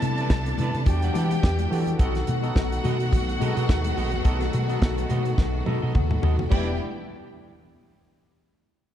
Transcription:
Already playing: tine electric piano C3 B3 E4 D5, string section C3 G3 B3 D4 E4, violin section A4 A5
0.02 fingered electric bass C3, muted clean electric guitar stroke, closed hi-hat, high conga
0.18 clean electric guitar B4 D5, closed hi-hat
0.22 clean electric guitar E4
0.29 fingered electric bass C2, muted clean electric guitar stroke, kick, snare, muted conga
0.46 muted clean electric guitar stroke, closed hi-hat
0.58 fingered electric bass C3, clean electric guitar E4, closed hi-hat, muted conga, high conga, low conga
0.62 clean electric guitar B4 D5
0.74 fingered electric bass C3, muted clean electric guitar stroke, closed hi-hat
0.86 fingered electric bass E2, tine electric piano E3 D4 F#4 G4, string section E3 G4, violin section G4 G5, muted clean electric guitar stroke, kick, closed hi-hat, low conga
1.02 clean electric guitar G4 D5 F#5, closed hi-hat
1.13 tine electric piano E3 D4 E4 G4, fingered electric bass E3, closed hi-hat, muted conga, high conga
1.17 clean electric guitar G4 D5 F#5
1.31 muted clean electric guitar stroke, closed hi-hat, high conga
1.43 fingered electric bass E2, muted clean electric guitar stroke, kick, snare, muted conga
1.59 muted clean electric guitar stroke, closed hi-hat, high conga
1.70 tine electric piano E3 D4 F#4 A4, fingered electric bass E3, clean electric guitar G4 D5 F#5, open hi-hat, muted conga
1.87 muted clean electric guitar stroke, closed hi-hat, low conga
1.98 fingered electric bass B1, tine electric piano B2 B3 D#4 A4, string section D#3 F#3 A3 B3 F#4, violin section F#4 F#5, clean electric guitar F#4 A4 D#5, kick, closed hi-hat
2.15 muted clean electric guitar stroke, snare, closed hi-hat
2.27 fingered electric bass B2, muted clean electric guitar stroke, closed hi-hat, muted conga, high conga
2.42 tine electric piano B2 B3 D#4 A4, clean electric guitar F#4 A4 D#5, closed hi-hat
2.56 fingered electric bass B1, muted clean electric guitar stroke, kick, snare, muted conga
2.72 muted clean electric guitar stroke, closed hi-hat
2.84 fingered electric bass B2, clean electric guitar F#4 A4 D#5, closed hi-hat, muted conga, high conga, low conga
3.00 muted clean electric guitar stroke, closed hi-hat
3.12 fingered electric bass B1, muted clean electric guitar stroke, kick, closed hi-hat, low conga
3.29 muted clean electric guitar stroke, closed hi-hat
3.39 tine electric piano B2 B3 D#4 G#4, fingered electric bass B2, clean electric guitar F#4 A4 D#5, closed hi-hat, muted conga, high conga
3.47 tine electric piano A4
3.56 fingered electric bass B2, clean electric guitar F#4 A4 D#5, closed hi-hat
3.69 fingered electric bass D#2, kick, snare
3.84 muted clean electric guitar stroke, closed hi-hat, high conga
3.96 fingered electric bass A#1, clean electric guitar F#4 A4 D#5, open hi-hat, muted conga
4.12 muted clean electric guitar stroke, closed hi-hat, low conga
4.24 fingered electric bass B1, tine electric piano B2 B3 D#4 A4, clean electric guitar F#4 A4 D#5, kick, closed hi-hat, muted conga
4.40 muted clean electric guitar stroke, snare, closed hi-hat
4.53 fingered electric bass B2, muted clean electric guitar stroke, closed hi-hat, muted conga, high conga
4.68 tine electric piano B2 B3 D#4 A4, clean electric guitar F#4 A4 D#5, closed hi-hat
4.82 fingered electric bass B1, muted clean electric guitar stroke, kick, snare, muted conga
4.98 muted clean electric guitar stroke, closed hi-hat
5.10 fingered electric bass B2, clean electric guitar F#4 A4 D#5, closed hi-hat, high conga, low conga
5.25 muted clean electric guitar stroke, closed hi-hat
5.38 fingered electric bass B1, muted clean electric guitar stroke, kick, snare, muted conga, low conga
5.55 muted clean electric guitar stroke
5.65 tine electric piano B2 B3 D#4 A4, fingered electric bass B2, clean electric guitar F#4 A4 D#5, high tom, muted conga, high conga
5.82 fingered electric bass B2, clean electric guitar F#4 A4 D#5
5.95 fingered electric bass D#2, muted clean electric guitar stroke, kick, mid tom, muted conga
6.11 muted clean electric guitar stroke, mid tom, high conga
6.22 fingered electric bass D#2, clean electric guitar F#4 A4 D#5, floor tom
6.39 muted clean electric guitar stroke, floor tom, low conga
6.50 fingered electric bass E1, tine electric piano E3 B3 D4 G4, string section E3 G3 B3 D4 G4, violin section E4 D5 G5, clean electric guitar G4 B4 D5, kick, crash, high conga

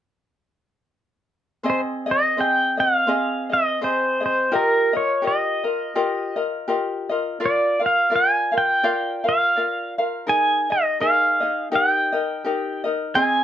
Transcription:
1.63 ukulele C4 G#4 C5 D#5
1.70 pedal steel guitar C5
2.06 ukulele C4 G#4 D#5
2.11 pedal steel guitar D#5
2.37 ukulele C4 G#4 C5 D#5, pedal steel guitar G5
2.77 ukulele C4 G#4 D#5, pedal steel guitar F5
3.07 ukulele C4 G#4 C5 D#5
3.50 ukulele C4 G#4 D#5, pedal steel guitar D#5
3.81 ukulele C4 G#4 C5 D#5, pedal steel guitar C5
4.20 ukulele C4 G#4 D#5
4.26 pedal steel guitar C5
4.52 ukulele F4 G4 A#4 D#5, pedal steel guitar A#4
4.93 ukulele F4 A#4 D#5, pedal steel guitar C#5
5.22 ukulele F4 G4 A#4 D#5
5.27 pedal steel guitar D#5
5.64 ukulele F4 A#4 D#5
5.95 ukulele F4 G4 A#4 D#5
6.36 ukulele F4 A#4 D#5
6.68 ukulele F4 G4 A#4 D#5
7.09 ukulele F4 A#4 D#5
7.40 ukulele F4 A#4 D5 F5
7.46 pedal steel guitar D5
7.80 ukulele F4 A#4 F5
7.86 pedal steel guitar F5
8.10 ukulele F4 A#4 D5 F5
8.16 pedal steel guitar G#5
8.52 ukulele F4 A#4 F5
8.58 pedal steel guitar G5
8.83 ukulele F4 A#4 D5 F5
9.24 ukulele F4 A#4 F5
9.29 pedal steel guitar F5
9.56 ukulele F4 A#4 D5 F5
9.98 ukulele F4 A#4 F5
10.27 ukulele D#4 G#4 A#4 D#5, pedal steel guitar G#5
10.70 ukulele D#4 G#4 D#5, pedal steel guitar D#5
11.00 ukulele D#4 G#4 A#4 D#5, pedal steel guitar F5
11.40 ukulele D#4 G#4 D#5
11.72 ukulele D#4 G4 A#4 D#5, pedal steel guitar G5
12.12 ukulele D#4 A#4 D#5
12.44 ukulele D#4 G4 A#4 D#5
12.84 ukulele D#4 A#4 D#5
13.15 ukulele C4 G#4 C5 D#5, pedal steel guitar G#5

